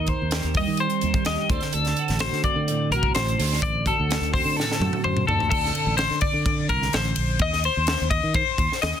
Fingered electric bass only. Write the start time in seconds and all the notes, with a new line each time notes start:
Already playing: D#2
0.22 D#2
0.44 D#2
0.67 D#3
1.03 D#2
1.26 D#2
1.50 D2
1.74 D2
2.09 A1
2.32 D3
2.56 D3
2.91 C2
3.16 A1
3.40 D2
3.63 A1
4.00 D2
4.21 D2
4.45 D3
4.80 F#2
5.05 F#2
5.28 D2
5.52 D2
5.87 A1
6.11 D3
6.34 D3
6.69 C2
6.94 A1
7.17 A#1
7.39 D#2
7.77 D#2
8.01 D#2
8.23 D#3
8.58 D#2
8.83 D#2